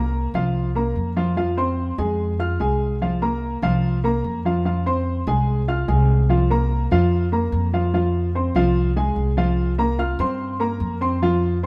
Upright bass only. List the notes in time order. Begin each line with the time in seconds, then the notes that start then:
Already playing: C2
0.34 C2
0.96 F2
1.98 F2
2.60 C2
3.62 C2
4.24 F2
5.27 C2
5.88 C2
6.91 F2
7.52 F2
8.55 C2
9.16 C2
10.19 G2
10.80 F2